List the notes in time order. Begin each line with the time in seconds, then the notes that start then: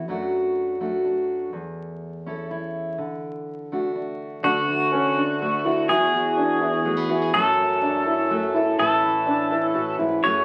0.08 F#2 F#3 A3 D4 F#4
0.80 A3 D4 F#4
1.05 D4
1.53 E2
2.26 C#4 E4 A4
2.50 E4
2.98 D3
3.72 A3 D4 F#4
3.95 D4
4.43 D2 D3 A3 D4 F#4 A4
4.68 D4
4.92 C#4
5.16 D4
5.40 A3 F#4
5.65 E4 F#4
5.89 E2 E3 B3 E4 F#4 G#4
6.13 F#4
6.37 D4
6.61 E4
6.85 A3 F#4
6.97 B3
7.09 E4 F#4
7.22 G#4
7.33 F#2 F#3 A3 C#4 F#4 A4
7.59 C#4
7.82 D4
8.06 E4
8.30 A3 F#4
8.54 E4 A4
8.78 A2 E3 C#4 E4 A4 B4
9.03 E4
9.27 D4
9.51 E4
9.74 A2 F#4
9.99 G#2 E4
10.23 F#2 F#3 A3 C#4 F#4 G#4 C#5